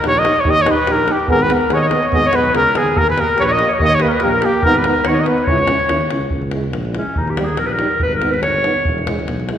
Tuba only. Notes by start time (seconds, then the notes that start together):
0.04 A#1
0.45 D#2
0.87 A#1
1.29 G#1
1.70 D#2
2.13 G#1
2.34 B1
2.54 C#2
2.76 D#2
2.96 D#2
3.39 A#1
3.80 D#2
4.23 A#1
4.65 G#1
5.05 D#2
5.47 C#2
5.89 D#2
6.11 C#2
6.32 C#2
6.74 A#1
7.16 D#2
7.59 A#1
8.02 G#1
8.44 G1
8.87 E1
9.29 B1